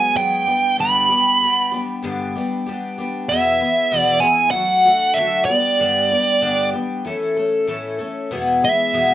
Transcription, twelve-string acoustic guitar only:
Already playing: F#3 G#3 B3 G#4
0.14 F#3 G#3 B3 G#4
0.46 G3 B3 D4 G4
0.77 G2 D3 G3 B3 D4 G4
1.09 G3 B3 D4 G4
1.41 G3 B3 D4 G4
1.72 G3 B3 D4 G4
2.02 G2 D3 G3 B3 D4 G4
2.36 G3 B3 D4 G4
2.66 G3 B3 D4 G4
2.98 G3 B3 D4 G4
3.29 E2 B2 E3 B3 E4 G#4
3.60 E3 B3 E4 G#4
3.91 E2 B2 E3 B3 E4 G#4
4.22 E3 B3 E4 G#4
4.53 F#3 A3 D4 F#4
4.85 A3 D4 F#4
5.17 D3 F#3 A3 D4 F#4
5.48 G3 B3 D4 G4
5.79 G2 D3 G3 B3 D4 G4
6.11 G3 B3 D4 G4
6.41 G2 D3 G3 B3 D4 G4
6.73 G3 B3 D4 G4
7.05 E3 A3 C#4 A4
7.37 A3 C#4 A4
7.67 A2 E3 A3 C#4 A4
7.99 A3 C#4 A4
8.31 E2 B2 E3 G#3 B3 G#4
8.62 G#3 B3 G#4
8.93 E2 B2 E3 G#3 B3 G#4

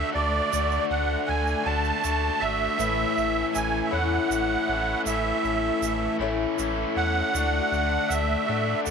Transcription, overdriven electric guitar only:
Already playing: D3 A3 D4 F#4
0.12 A3 D4 F#4
0.50 D3 A3 D4 F#4
1.63 D3 A3 D4 F#4
2.02 D3 A3 D4 F#4
2.40 A3 D4 F#4
2.78 A2 E3 A3 C#4 E4
3.91 A2 E3 A3 C#4 E4
4.28 E3 A3 C#4 E4
4.66 A3 C#4 E4
5.04 A2 E3 A3 C#4 E4
6.19 A2 E3 A3 C#4 E4
6.57 E3 A3 C#4 E4
6.95 A3 C#4 E4
7.32 D3 A3 D4 F#4
8.46 D3 A3 D4 F#4
8.84 D3 A3 D4 F#4

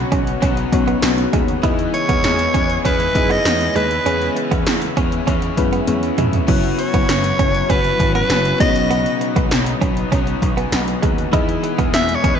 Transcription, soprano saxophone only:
1.94 C#5
2.85 B4
3.31 D#5
3.76 B4
6.79 C#5
7.70 B4
8.15 B4
8.60 D#5
11.94 E5
12.15 C#5
12.35 B4

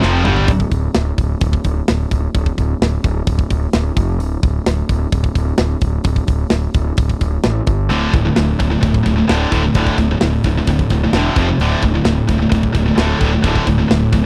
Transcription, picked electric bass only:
0.03 F1
0.26 G1
0.49 D1
0.72 D1
0.96 D1
1.19 D1
1.42 D1
1.65 D1
1.90 D1
2.11 D1
2.35 D1
2.58 D1
2.82 D1
3.05 D1
3.27 D1
3.51 D1
3.74 D1
3.97 F1
4.20 D1
4.43 D1
4.66 D1
4.89 D1
5.13 D1
5.36 D1
5.59 D1
5.82 D1
6.05 D1
6.28 D1
6.51 D1
6.75 D1
6.98 D1
7.22 D1
7.45 A1
7.67 G1
7.91 D1
8.13 D1
8.38 D1
8.60 D1
8.83 D1
9.06 D1
9.30 D1
9.52 D1
9.75 D1
9.99 D1
10.22 D1
10.45 D1
10.68 D1
10.91 D1
11.13 E1
11.36 F1
11.59 D1
11.83 D1
12.04 D1
12.29 D1
12.52 D1
12.75 D1
12.97 D1
13.21 D1
13.44 D1
13.67 D1
13.92 D1
14.13 D1

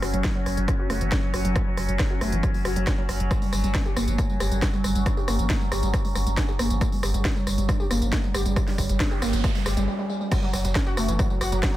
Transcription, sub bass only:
0.02 F#1
0.14 F#1
0.46 F#1
0.57 F#1
0.90 F#1
1.01 F#1
1.34 F#1
1.45 F#1
1.77 F#1
1.89 F#1
2.21 F#1
2.32 F#1
2.65 F#1
2.76 F#1
3.09 F#1
3.20 F#1
3.53 G1
3.64 G1
3.96 G1
4.08 G1
4.40 G1
4.51 G1
4.84 G1
4.95 G1
5.28 G1
5.39 G1
5.72 G1
5.83 G1
6.15 G1
6.27 G1
6.59 G1
6.70 G1
7.03 G1
7.14 G1
7.47 G1
7.58 G1
7.91 G1
8.02 G1
8.34 G1
8.46 G1
8.78 G1
8.89 G1
9.22 G1
9.33 G1
9.66 G1
9.77 G1
10.53 F#1
10.65 F#1
10.97 F#1
11.08 F#1
11.41 F#1
11.52 F#1

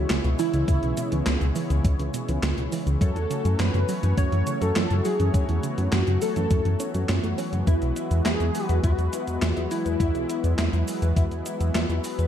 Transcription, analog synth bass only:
0.10 C#2
0.24 C#2
0.53 C#2
0.68 C#2
0.83 B1
1.12 C#2
1.26 C#2
1.41 C#2
1.70 C#2
1.85 C#2
1.99 C#2
2.28 C#2
2.43 C#2
2.57 C#2
2.86 C#2
3.01 F#2
3.15 E2
3.45 F#2
3.59 F#2
3.74 F#2
4.03 F#2
4.18 F#2
4.32 F#2
4.61 F#2
4.76 F#2
4.91 F#2
5.20 F#2
5.34 F#2
5.49 E2
5.78 F#2
5.93 F#2
6.07 F#2
6.36 F#2
6.51 F#2
6.65 F#2
6.94 F#2
7.09 F#2
7.24 F#2
7.53 F#2
7.67 E2
7.82 B1
8.11 E2
8.25 E2
8.40 E2
8.69 E2
8.84 E2
8.98 E2
9.27 E2
9.42 E2
9.57 E2
9.86 E2
10.00 E2
10.15 B1
10.44 E2
10.58 E2
10.73 E2
11.02 E2
11.17 E2
11.31 E2
11.60 E2
11.75 E2
11.89 E2
12.18 E2

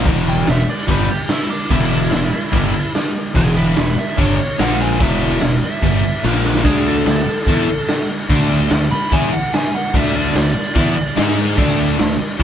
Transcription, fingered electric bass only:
0.06 E1
0.47 E1
0.69 muted fingered electric bass stroke
0.89 G1
1.71 E1
2.13 E1
2.33 muted fingered electric bass stroke
2.53 G1
3.36 E1
3.78 E1
3.98 muted fingered electric bass stroke
4.18 G1
4.60 A#1
5.01 E1
5.42 E1
5.64 muted fingered electric bass stroke
5.83 G1
6.24 A#1
6.65 D2
7.07 D2
7.28 muted fingered electric bass stroke
7.47 E2
8.30 D2
8.71 D2
8.92 muted fingered electric bass stroke
9.12 E2
9.94 D2
10.35 D2
10.57 muted fingered electric bass stroke
10.76 E2
11.18 G#2
11.58 D2
12.00 D2
12.21 muted fingered electric bass stroke

